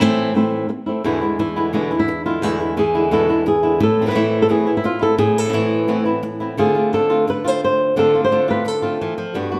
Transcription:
0.01 A2 E3 A3 C4 E4
0.34 A2 E3 A3 C4 E4
0.69 muted nylon-string guitar stroke
0.86 A3 C4 E4
1.04 E2 B2 D3 E3 G#3 B3 D4 E4
1.21 D3 G#3 B3 E4
1.39 E3 E4, muted nylon-string guitar stroke
1.56 D3 G#3 B3 E4
1.73 E2 B2 D3 G#3 B3 D4 E4
1.91 D3 G#3 B3 E4
1.99 E4
2.08 muted nylon-string guitar stroke
2.26 D3 G#3 B3 E4 F4
2.42 E2 B2 D3 G#3 B3 E4
2.60 D3 G#3 B3 E4
2.77 E3 G#4, muted nylon-string guitar stroke
2.95 D3 G#3 B3 E4
3.11 E2 B2 D3 G#3 B3 E4 A4
3.29 D3 G#3 B3 D4 E4
3.46 G#4, muted nylon-string guitar stroke
3.63 D3 G#3 B3 E4
3.80 A2 A4, muted nylon-string guitar stroke
3.99 E3 B3 C4 E4
4.06 E3 B3 C4 E4 B4
4.10 E3 B3 C4 E4
4.15 A2 E3 A3 C4 E4
4.42 A4
4.49 A2 E3 B3 C4 E4 G#4
4.66 B3 C4 E4
4.77 E4
4.84 F4, muted nylon-string guitar stroke
5.01 B3 C4 E4 A4
5.18 A2 G#4, muted nylon-string guitar stroke
5.38 A4
5.44 E3 B3 C4 E4
5.49 E3 B3 C4 E4
5.53 A2 E3 B3 C4 E4
5.88 A2 E3 B3 C4 E4
6.05 B3 C4 E4
6.23 muted nylon-string guitar stroke
6.40 B3 C4 E4
6.57 D3 A3 C4 F4 G#4
6.75 A3 C4 F4
6.93 D3 A3 C4 D4 F4 A4
7.10 A3 C4 F4
7.27 B4, muted nylon-string guitar stroke
7.44 A3 C4 F4 C5
7.64 C5
7.96 D3 A3 C4 F4 A4
8.14 A3 C4 F4
8.24 C5
8.31 D3 A3 C4 D4 F4
8.48 A3 C4 F4 B4
8.65 A4, muted nylon-string guitar stroke
8.82 A3 C4 F4
9.01 E3
9.18 F3
9.34 G2 G3 B3 D4 F#4
9.52 B3 F#4

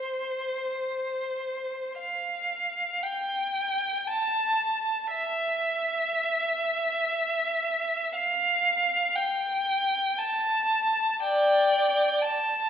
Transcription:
Already playing: C5
1.97 F5
3.03 G5
4.07 A5
5.10 E5
8.15 F5
9.15 G5
10.18 A5
11.22 D5 G5
12.21 A5

